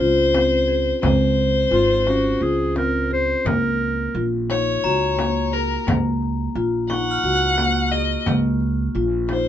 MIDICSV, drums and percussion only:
0, 0, Header, 1, 2, 480
1, 0, Start_track
1, 0, Tempo, 688073
1, 715, Time_signature, 7, 3, 24, 8
1, 6615, End_track
2, 0, Start_track
2, 0, Title_t, "Frame drum"
2, 241, Note_on_c, 9, 64, 45
2, 311, Note_off_c, 9, 64, 0
2, 718, Note_on_c, 9, 64, 54
2, 788, Note_off_c, 9, 64, 0
2, 1443, Note_on_c, 9, 64, 36
2, 1513, Note_off_c, 9, 64, 0
2, 1681, Note_on_c, 9, 64, 17
2, 1751, Note_off_c, 9, 64, 0
2, 1925, Note_on_c, 9, 64, 43
2, 1995, Note_off_c, 9, 64, 0
2, 2171, Note_on_c, 9, 64, 17
2, 2241, Note_off_c, 9, 64, 0
2, 2413, Note_on_c, 9, 64, 54
2, 2483, Note_off_c, 9, 64, 0
2, 2658, Note_on_c, 9, 64, 16
2, 2727, Note_off_c, 9, 64, 0
2, 3137, Note_on_c, 9, 64, 39
2, 3207, Note_off_c, 9, 64, 0
2, 3618, Note_on_c, 9, 64, 45
2, 3688, Note_off_c, 9, 64, 0
2, 4100, Note_on_c, 9, 64, 55
2, 4170, Note_off_c, 9, 64, 0
2, 4340, Note_on_c, 9, 64, 16
2, 4410, Note_off_c, 9, 64, 0
2, 4812, Note_on_c, 9, 64, 42
2, 4882, Note_off_c, 9, 64, 0
2, 5288, Note_on_c, 9, 64, 43
2, 5357, Note_off_c, 9, 64, 0
2, 5764, Note_on_c, 9, 64, 49
2, 5834, Note_off_c, 9, 64, 0
2, 6002, Note_on_c, 9, 64, 17
2, 6071, Note_off_c, 9, 64, 0
2, 6479, Note_on_c, 9, 64, 42
2, 6549, Note_off_c, 9, 64, 0
2, 6615, End_track
0, 0, End_of_file